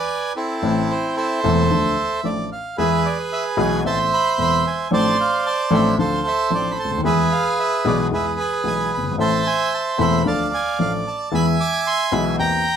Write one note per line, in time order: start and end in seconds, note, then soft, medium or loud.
0.00 0.33 B4 medium
0.00 0.33 D5 medium
0.00 0.33 G#5 loud
0.36 1.40 C4 medium
0.36 1.40 E4 medium
0.36 0.92 A4 medium
0.62 0.86 A1 medium
0.62 0.86 A2 medium
0.62 0.85 E3 medium
0.62 0.86 A3 medium
0.62 0.86 C4 medium
0.62 0.86 A4 medium
0.91 1.16 C5 medium
1.17 2.20 A4 medium
1.17 2.21 C5 medium
1.17 2.28 E5 loud
1.44 1.67 E1 medium
1.44 1.67 E2 medium
1.44 1.67 E3 medium
1.44 1.67 A3 medium
1.44 1.67 C4 medium
1.44 1.67 A4 medium
1.71 1.94 D2 medium
1.71 1.94 D3 medium
1.71 1.94 F3 soft
1.71 1.94 A3 soft
1.71 1.94 D4 soft
1.71 1.94 A4 medium
2.24 2.47 A1 medium
2.24 2.47 A2 medium
2.24 2.47 F3 medium
2.24 2.47 A3 soft
2.24 2.47 D4 soft
2.24 2.47 A4 medium
2.24 2.50 D5 medium
2.52 2.77 F5 medium
2.78 3.01 E2 medium
2.78 3.01 E3 medium
2.78 3.01 G#3 medium
2.78 3.01 B3 medium
2.78 3.81 G#4 medium
2.78 3.01 G#4 medium
2.78 3.81 B4 medium
2.78 3.06 E5 loud
3.06 3.17 D5 medium
3.33 3.44 E5 loud
3.57 3.80 B1 loud
3.57 3.80 B2 medium
3.57 3.80 E3 medium
3.57 3.80 G#3 medium
3.57 3.80 B3 medium
3.57 3.80 G#4 medium
3.57 3.83 G#5 loud
3.84 4.07 A1 medium
3.84 4.07 A2 medium
3.84 4.07 E3 medium
3.84 4.07 B3 soft
3.84 4.07 C4 soft
3.84 4.07 A4 medium
3.84 4.88 C5 medium
3.84 4.88 E5 medium
3.84 3.98 A5 loud
4.14 4.40 B5 loud
4.38 4.60 E1 medium
4.38 4.61 E2 medium
4.38 4.60 E3 medium
4.38 4.60 B3 soft
4.38 4.61 C4 soft
4.38 4.61 A4 medium
4.38 4.64 B5 loud
4.67 4.91 G#5 medium
4.91 5.14 A1 medium
4.91 5.14 A2 medium
4.91 5.13 F3 medium
4.91 5.14 C4 medium
4.91 5.13 D4 medium
4.91 5.14 A4 medium
4.91 5.95 C5 medium
4.91 5.95 D5 medium
4.91 5.18 A5 loud
5.21 5.47 F5 loud
5.47 5.71 A5 loud
5.71 5.93 A1 loud
5.71 5.93 A2 medium
5.71 5.93 F3 medium
5.71 5.93 C4 medium
5.71 5.93 D4 medium
5.71 5.94 A4 loud
5.71 5.98 E5 medium
5.98 6.20 D2 medium
5.98 6.21 D3 medium
5.98 6.20 F3 medium
5.98 6.20 C4 soft
5.98 6.20 D4 soft
5.98 6.21 A4 medium
5.98 7.01 A4 medium
5.98 7.01 C5 medium
5.98 6.26 F5 medium
6.28 6.51 E5 loud
6.50 6.73 A1 medium
6.50 6.73 A2 medium
6.50 6.73 F3 soft
6.50 6.73 C4 medium
6.50 6.73 D4 soft
6.50 6.73 A4 medium
6.55 6.72 D5 medium
6.71 6.78 B5 medium
6.80 6.91 A5 medium
6.84 6.91 C#2 medium
6.91 6.98 D2 medium
6.98 7.04 D#2 medium
7.04 7.27 E2 medium
7.04 7.27 E3 medium
7.04 7.27 G#3 medium
7.04 7.27 B3 medium
7.04 7.27 G#4 medium
7.04 8.08 G#4 medium
7.04 8.07 B4 medium
7.04 7.32 E5 loud
7.32 7.59 F5 loud
7.59 7.86 E5 loud
7.85 8.07 B1 medium
7.85 8.07 B2 medium
7.85 8.07 E3 medium
7.85 8.07 G#3 medium
7.85 8.07 B3 medium
7.85 8.07 G#4 medium
7.85 7.99 D5 medium
8.11 8.34 E2 medium
8.11 8.34 E3 medium
8.11 8.34 G#3 medium
8.11 8.34 B3 soft
8.11 8.34 G#4 medium
8.11 9.16 G#4 medium
8.11 9.16 B4 medium
8.11 8.26 E5 medium
8.40 8.52 B5 loud
8.64 8.87 B1 medium
8.64 8.87 B2 medium
8.64 8.87 E3 soft
8.64 8.87 G#3 soft
8.64 8.87 B3 soft
8.64 8.87 G#4 medium
8.64 8.91 G#5 medium
8.94 9.05 F#1 medium
8.94 9.06 B5 medium
9.03 9.11 G1 medium
9.11 9.18 G#1 medium
9.18 9.41 A1 medium
9.18 9.41 A2 medium
9.18 9.41 E3 medium
9.18 9.41 A3 medium
9.18 9.41 C4 medium
9.18 9.41 A4 medium
9.18 10.23 C5 medium
9.18 10.22 E5 medium
9.18 9.47 A5 loud
9.47 9.74 G#5 loud
9.74 9.98 A5 medium
9.98 10.21 E1 loud
9.98 10.21 E2 medium
9.98 10.21 E3 medium
9.98 10.21 A3 medium
9.98 10.21 C4 medium
9.98 10.21 A4 medium
9.98 10.27 B5 loud
10.25 10.48 D2 medium
10.25 10.48 D3 medium
10.25 10.48 F3 medium
10.25 10.48 A3 soft
10.25 10.48 D4 soft
10.25 10.48 A4 medium
10.25 11.29 D5 medium
10.25 10.79 F5 medium
10.25 10.52 A5 loud
10.54 10.78 G#5 loud
10.79 11.02 A1 medium
10.79 11.01 A2 medium
10.79 11.02 F3 medium
10.79 11.02 A3 soft
10.79 11.02 D4 soft
10.79 11.02 A4 medium
10.79 10.92 F5 medium
11.08 11.34 A5 medium
11.32 11.54 E2 medium
11.32 11.54 E3 medium
11.32 11.54 G#3 medium
11.32 11.54 B3 medium
11.32 11.55 G#4 medium
11.32 12.36 E5 medium
11.32 12.36 G#5 medium
11.32 11.46 B5 loud
11.61 11.87 D6 loud
11.87 12.14 C6 loud
12.12 12.35 B1 medium
12.12 12.35 B2 medium
12.12 12.34 E3 medium
12.12 12.35 G#3 medium
12.12 12.35 B3 medium
12.12 12.35 G#4 medium
12.12 12.25 B5 loud
12.38 12.61 E2 medium
12.38 12.61 E3 medium
12.38 12.61 A#3 soft
12.38 12.61 C4 soft
12.38 12.61 G4 medium
12.38 12.77 G5 medium
12.38 12.77 A#5 loud